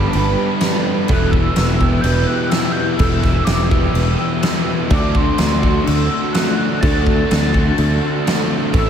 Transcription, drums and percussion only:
0.13 crash medium
0.61 snare loud
0.61 crash medium
1.08 kick loud
1.08 crash medium
1.33 kick medium
1.56 snare loud
1.56 crash medium
1.81 kick medium
2.04 crash medium
2.51 snare loud
2.51 crash medium
2.99 kick loud
2.99 crash medium
3.24 kick medium
3.24 snare soft
3.47 snare loud
3.47 crash medium
3.71 kick medium
3.95 crash medium
4.43 snare loud
4.43 crash medium
4.90 kick loud
4.90 crash medium
5.15 kick medium
5.38 snare loud
5.38 crash medium
5.63 kick medium
5.87 crash medium
6.34 snare loud
6.34 crash medium
6.83 kick loud
6.83 crash medium
7.07 kick medium
7.31 snare loud
7.31 crash medium
7.54 kick medium
7.78 crash medium
8.27 snare loud
8.27 crash medium
8.74 kick loud
8.74 crash medium

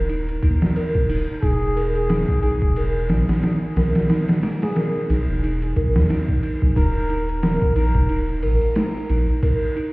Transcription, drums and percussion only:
0.09 ride medium
0.29 ride soft
0.42 kick medium
0.42 ride medium
0.62 snare loud
0.76 ride medium
0.95 kick loud
1.09 open hi-hat medium
1.43 kick loud
1.43 ride medium
1.77 ride medium
1.95 ride soft
2.09 snare loud
2.09 ride medium
2.28 kick loud
2.43 ride medium
2.62 kick loud
2.76 ride medium
3.09 snare loud
3.09 ride medium
3.29 snare loud
3.29 ride medium
3.43 snare loud
3.43 ride medium
3.76 snare medium
3.76 ride medium
3.95 snare loud
3.95 ride medium
4.09 snare loud
4.09 ride medium
4.29 snare loud
4.29 ride medium
4.43 snare loud
4.43 ride medium
4.62 snare loud
4.62 ride medium
4.76 snare loud
4.76 ride medium
4.96 snare soft
5.10 snare soft
5.10 ride medium
5.44 ride medium
5.62 ride soft
5.76 kick medium
5.76 ride medium
5.96 snare loud
6.10 snare loud
6.10 ride medium
6.29 kick medium
6.43 ride medium
6.62 kick medium
6.76 kick loud
6.76 ride medium
7.10 ride medium
7.29 ride soft
7.43 snare loud
7.43 ride medium
7.62 kick medium
7.76 ride medium
7.95 kick loud
8.09 ride medium
8.43 ride medium
8.61 ride soft
8.75 snare loud
8.75 ride medium
9.09 ride medium
9.43 kick loud
9.43 ride medium
9.77 ride medium

